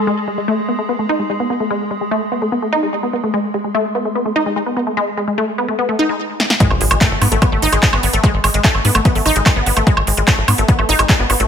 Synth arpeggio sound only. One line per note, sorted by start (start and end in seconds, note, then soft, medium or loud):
0.07 0.11 G#3 loud
0.28 0.30 G#3 medium
0.38 0.44 G#3 medium
0.48 0.54 A3 loud
0.68 0.71 B3 medium
0.79 0.84 A3 medium
0.89 0.93 B3 medium
0.99 1.05 A3 medium
1.09 1.13 D#4 loud
1.20 1.25 G#3 medium
1.30 1.35 G#3 medium
1.40 1.44 B3 medium
1.50 1.52 B3 medium
1.60 1.66 A3 medium
1.70 1.74 G#3 medium
1.91 1.93 G#3 medium
2.01 2.07 G#3 medium
2.11 2.17 A3 loud
2.32 2.34 B3 medium
2.42 2.48 A3 medium
2.52 2.56 B3 medium
2.62 2.68 A3 medium
2.73 2.76 D#4 loud
2.83 2.88 G#3 medium
2.93 2.99 G#3 medium
3.03 3.07 B3 medium
3.13 3.16 B3 medium
3.24 3.29 A3 medium
3.34 3.38 G#3 loud
3.54 3.56 G#3 medium
3.64 3.70 G#3 medium
3.75 3.80 A3 loud
3.95 3.97 B3 medium
4.05 4.11 A3 medium
4.15 4.19 B3 medium
4.26 4.31 A3 medium
4.36 4.40 D#4 loud
4.46 4.52 G#3 medium
4.56 4.62 G#3 medium
4.66 4.70 B3 medium
4.77 4.79 B3 medium
4.87 4.92 A3 medium
4.97 5.01 G#3 loud
5.17 5.20 G#3 medium
5.28 5.33 G#3 medium
5.38 5.43 A3 loud
5.58 5.61 B3 medium
5.68 5.74 A3 medium
5.79 5.82 B3 medium
5.89 5.95 A3 medium
5.99 6.03 D#4 loud
6.09 6.15 G#3 medium
6.60 6.64 G#3 loud
6.81 6.83 G#3 medium
6.91 6.97 G#3 medium
7.01 7.07 A3 loud
7.21 7.24 B3 medium
7.32 7.37 A3 medium
7.42 7.46 B3 medium
7.52 7.58 A3 medium
7.62 7.66 D#4 loud
7.73 7.78 G#3 medium
7.83 7.88 G#3 medium
7.93 7.97 B3 medium
8.03 8.05 B3 medium
8.13 8.19 A3 medium
8.24 8.27 G#3 loud
8.44 8.46 G#3 medium
8.54 8.60 G#3 medium
8.64 8.70 A3 loud
8.85 8.87 B3 medium
8.95 9.01 A3 medium
9.05 9.09 B3 medium
9.15 9.21 A3 medium
9.26 9.29 D#4 loud
9.36 9.41 G#3 medium
9.46 9.52 G#3 medium
9.56 9.60 B3 medium
9.66 9.69 B3 medium
9.77 9.82 A3 medium
9.87 9.91 G#3 medium
10.07 10.10 G#3 medium
10.17 10.23 G#3 medium
10.28 10.33 A3 loud
10.48 10.50 B3 medium
10.58 10.64 A3 medium
10.68 10.72 B3 medium
10.79 10.84 A3 medium
10.89 10.93 D#4 loud
10.99 11.05 G#3 medium
11.09 11.15 G#3 medium
11.19 11.23 B3 medium
11.30 11.32 B3 medium
11.40 11.46 A3 medium